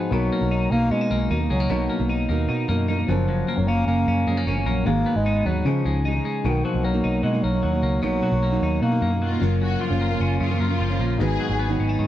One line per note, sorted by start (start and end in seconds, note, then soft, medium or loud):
0.00 0.12 G#2 medium
0.00 0.15 F3 medium
0.00 0.11 F#3 medium
0.00 0.10 B3 medium
0.00 0.12 B3 soft
0.00 0.32 B3 medium
0.00 0.11 D#4 medium
0.00 0.12 D#4 medium
0.00 0.51 D#4 medium
0.00 0.13 F#4 medium
0.00 0.14 G#4 medium
0.10 0.29 B1 loud
0.10 0.41 B2 medium
0.10 1.69 B2 medium
0.10 0.42 F#3 medium
0.10 0.73 F#3 loud
0.10 0.42 A#3 loud
0.10 3.04 B3 medium
0.10 3.04 D#4 medium
0.10 0.40 D#4 medium
0.10 3.05 F#4 medium
0.10 3.06 A#4 medium
0.32 0.72 A#3 medium
0.41 0.67 B1 loud
0.41 0.71 F#3 medium
0.41 0.72 A#3 medium
0.41 0.71 D#4 medium
0.51 0.91 D#4 medium
0.71 0.88 B1 medium
0.71 1.09 B2 medium
0.71 1.11 F#3 medium
0.71 0.93 A#3 loud
0.71 1.10 A#3 medium
0.71 1.12 A#3 medium
0.71 1.12 D#4 medium
0.91 1.08 B2 loud
0.91 1.31 G#3 loud
0.91 1.01 C#4 medium
1.01 1.30 D#4 medium
1.10 1.27 B1 medium
1.10 1.28 B2 medium
1.10 1.29 F#3 medium
1.10 1.50 A#3 medium
1.10 1.30 A#3 medium
1.10 1.31 D#4 medium
1.29 1.47 D#2 loud
1.29 1.40 B2 medium
1.29 1.40 F#3 medium
1.29 1.40 A#3 medium
1.29 2.08 D#4 medium
1.29 1.38 D#4 medium
1.40 1.69 F#3 soft
1.40 1.69 A#3 medium
1.40 1.70 D#4 medium
1.50 1.67 C#2 loud
1.50 2.26 F#3 medium
1.50 1.60 G#3 medium
1.60 1.88 A#3 medium
1.69 1.87 B1 loud
1.69 1.99 B2 medium
1.69 3.08 B2 medium
1.69 2.00 F#3 medium
1.69 1.99 A#3 medium
1.69 1.97 D#4 medium
1.90 2.28 A#3 medium
1.99 2.25 B1 loud
1.99 2.29 F#3 medium
1.99 2.29 A#3 medium
1.99 2.29 D#4 medium
2.09 2.47 D#4 medium
2.29 2.46 D#2 loud
2.29 2.67 B2 medium
2.29 2.69 F#3 medium
2.29 2.68 A#3 medium
2.29 2.70 A#3 medium
2.29 2.70 D#4 medium
2.49 2.66 B2 loud
2.49 2.87 D#4 medium
2.68 3.02 F#2 loud
2.68 2.87 B2 medium
2.68 2.88 F#3 medium
2.68 3.12 A#3 medium
2.68 2.89 A#3 medium
2.68 2.89 D#4 medium
2.88 2.98 B2 medium
2.88 2.99 F#3 medium
2.88 2.99 A#3 medium
2.88 3.12 D#4 medium
2.88 2.97 D#4 medium
2.98 3.10 F#3 soft
2.98 3.09 A#3 medium
2.98 3.08 D#4 medium
3.07 3.42 F#1 loud
3.07 3.27 F#2 medium
3.07 3.58 F#2 medium
3.07 3.58 C#3 medium
3.07 3.59 F3 medium
3.07 3.58 A#3 medium
3.07 4.82 C#4 medium
3.07 3.56 C#4 loud
3.07 4.83 F4 medium
3.11 4.84 A#4 medium
3.28 4.86 F#2 medium
3.48 3.87 A#3 medium
3.58 3.83 F#1 medium
3.58 3.87 F3 soft
3.58 3.69 F#3 medium
3.58 3.87 A#3 soft
3.58 3.88 C#4 medium
3.68 3.86 A#3 loud
3.68 4.07 C#4 medium
3.86 4.04 F#1 medium
3.86 4.25 C#3 medium
3.86 4.26 F3 medium
3.86 4.43 A#3 loud
3.86 4.27 A#3 medium
3.86 4.28 C#4 medium
4.07 4.24 F#2 loud
4.07 4.46 C#4 medium
4.26 4.44 F#2 medium
4.26 4.45 C#3 medium
4.26 4.46 F3 medium
4.26 4.37 G#3 medium
4.26 4.47 A#3 medium
4.26 4.47 C#4 medium
4.37 4.65 A#3 medium
4.46 4.64 F#1 loud
4.46 4.56 C#3 medium
4.46 4.57 F3 medium
4.46 4.57 A#3 medium
4.46 4.91 C#4 medium
4.46 4.55 C#4 medium
4.56 4.87 F3 soft
4.56 4.87 A#3 medium
4.56 4.86 C#4 medium
4.66 4.83 A#1 loud
4.66 4.88 F#3 medium
4.66 4.90 A#3 medium
4.84 5.03 G#1 loud
4.84 5.16 G#2 medium
4.84 5.70 G#2 medium
4.84 5.16 D#3 medium
4.84 5.17 F#3 medium
4.84 5.63 G#3 medium
4.84 5.17 A#3 loud
4.84 5.63 D#4 medium
4.84 5.64 F#4 medium
4.88 5.14 D#4 loud
4.88 5.65 G#4 medium
5.06 5.45 B3 medium
5.16 5.41 G#1 medium
5.16 5.45 F#3 soft
5.16 5.48 G#3 loud
5.16 5.46 B3 medium
5.16 5.46 D#4 medium
5.26 6.05 D#4 medium
5.45 5.63 D#2 medium
5.45 5.65 D#3 medium
5.45 5.65 F#3 medium
5.45 5.69 F#3 medium
5.45 5.70 B3 medium
5.45 5.66 B3 medium
5.45 5.66 D#4 medium
5.63 5.84 C#3 medium
5.63 5.82 C#3 loud
5.63 6.45 C#3 medium
5.63 5.85 F3 medium
5.63 6.06 F3 medium
5.63 5.86 G#3 medium
5.63 6.42 C#4 medium
5.63 6.43 D#4 medium
5.63 5.86 D#4 medium
5.63 6.43 F4 medium
5.67 6.44 G#4 medium
5.85 6.19 C#2 medium
5.85 6.04 C#3 medium
5.85 6.05 F3 medium
5.85 6.24 G#3 medium
5.85 6.06 G#3 medium
5.85 6.06 D#4 medium
6.05 6.15 C#3 medium
6.05 6.16 F3 medium
6.05 6.15 G#3 medium
6.05 7.03 D#4 medium
6.05 6.14 D#4 medium
6.15 6.44 F3 medium
6.15 6.45 G#3 medium
6.15 6.45 D#4 medium
6.25 6.49 G#3 medium
6.44 6.62 B1 loud
6.44 6.74 B2 medium
6.44 8.01 B2 medium
6.44 6.67 D#3 medium
6.44 6.75 F#3 medium
6.44 9.37 A#3 medium
6.44 6.74 A#3 medium
6.44 9.38 D#4 medium
6.44 6.73 D#4 medium
6.44 9.38 F#4 medium
6.44 9.39 A#4 medium
6.65 6.86 F3 medium
6.65 7.23 F#3 medium
6.74 7.00 B1 medium
6.74 6.94 F#3 soft
6.74 6.93 A#3 soft
6.74 6.92 D#4 medium
6.85 7.23 F#3 loud
6.85 7.43 A#3 medium
6.94 7.34 B2 medium
6.94 7.34 F#3 medium
6.94 7.34 A#3 medium
6.94 7.32 D#4 medium
7.04 7.21 B1 medium
7.04 8.62 D#4 medium
7.23 7.41 B2 medium
7.23 7.63 F#3 medium
7.23 7.45 G#3 loud
7.33 7.54 B2 medium
7.33 7.54 F#3 medium
7.33 7.54 A#3 medium
7.33 7.52 D#4 medium
7.43 7.60 B1 medium
7.43 8.03 F#3 loud
7.43 7.83 A#3 medium
7.53 7.74 F#3 soft
7.53 7.73 A#3 medium
7.53 7.71 D#4 medium
7.63 7.80 D#2 loud
7.63 8.22 F#3 medium
7.72 8.01 F#3 soft
7.72 8.02 A#3 soft
7.72 8.02 D#4 medium
7.83 8.00 C#2 medium
7.83 8.42 A#3 medium
8.02 8.20 B1 loud
8.02 8.32 B2 medium
8.02 9.41 B2 medium
8.02 8.33 F#3 medium
8.02 8.79 F#3 loud
8.02 8.32 A#3 medium
8.02 8.30 D#4 medium
8.23 8.82 F#3 medium
8.32 8.58 B1 medium
8.32 8.52 F#3 soft
8.32 8.52 A#3 medium
8.32 8.51 D#4 medium
8.43 9.02 A#3 medium
8.52 8.92 B2 medium
8.52 8.92 F#3 medium
8.52 8.92 A#3 medium
8.52 8.90 D#4 medium
8.62 8.79 D#2 medium
8.62 9.46 D#4 medium
8.82 8.99 B2 loud
8.82 9.21 F#3 medium
8.82 9.38 A#3 loud
8.91 9.13 B2 medium
8.91 9.12 F#3 medium
8.91 9.12 A#3 medium
8.91 9.10 D#4 medium
9.02 9.36 F#2 medium
9.02 9.46 A#3 medium
9.11 9.33 F#3 soft
9.11 9.32 A#3 medium
9.11 9.30 D#4 medium
9.22 9.81 F#3 medium
9.22 9.59 F4 medium
9.31 9.43 F#3 medium
9.31 9.42 A#3 medium
9.31 9.41 D#4 medium
9.39 9.75 F#1 loud
9.39 9.91 F#2 loud
9.39 9.60 F#2 medium
9.39 9.91 C#3 medium
9.39 11.16 F#3 medium
9.39 9.90 A#3 loud
9.39 11.15 C#4 medium
9.39 11.16 F4 medium
9.43 9.89 C#4 loud
9.43 11.17 A#4 medium
9.61 11.20 F#2 medium
9.61 9.82 F#4 loud
9.81 10.79 F3 medium
9.81 10.39 F4 loud
9.90 10.16 F#1 medium
9.90 10.10 F3 medium
9.90 10.10 A#3 medium
9.90 10.09 C#4 medium
10.01 10.59 A#3 medium
10.11 10.51 F#2 medium
10.11 10.51 C#3 medium
10.11 10.51 F3 medium
10.11 10.50 A#3 medium
10.11 10.49 C#4 medium
10.20 10.37 F#1 medium
10.20 11.24 C#4 medium
10.40 10.57 F#2 loud
10.40 11.24 C#3 medium
10.40 11.16 F4 loud
10.51 10.71 F#2 medium
10.51 10.71 C#3 medium
10.51 10.71 F3 medium
10.51 10.70 A#3 medium
10.51 10.68 C#4 medium
10.60 10.77 F#2 medium
10.60 10.99 A#3 medium
10.70 10.91 F3 medium
10.70 10.90 A#3 medium
10.70 10.89 C#4 medium
10.80 10.97 F#1 loud
10.80 11.24 F3 medium
10.90 11.20 F3 medium
10.90 11.21 A#3 medium
10.90 11.20 C#4 medium
10.99 11.16 A#1 medium
10.99 11.24 A#3 medium
11.18 11.36 G#1 loud
11.18 11.49 G#2 medium
11.18 12.07 G#2 medium
11.18 11.50 D#3 medium
11.18 11.50 F#3 loud
11.18 11.50 B3 loud
11.18 12.07 D#4 medium
11.18 11.49 D#4 medium
11.18 12.07 F#4 medium
11.18 11.95 G#4 loud
11.18 12.07 G#4 medium
11.18 12.07 B4 medium
11.40 12.07 F#3 medium
11.50 11.75 G#1 loud
11.50 11.69 F#3 medium
11.50 11.69 B3 medium
11.50 11.68 D#4 medium
11.59 12.07 B3 medium
11.69 12.07 G#2 medium
11.69 12.07 D#3 medium
11.69 12.07 F#3 medium
11.69 12.07 B3 medium
11.69 12.07 D#4 medium
11.79 11.96 G#1 medium
11.79 11.89 C#4 medium
11.89 12.07 D#4 medium
11.99 12.07 G#2 medium
11.99 12.07 D#3 medium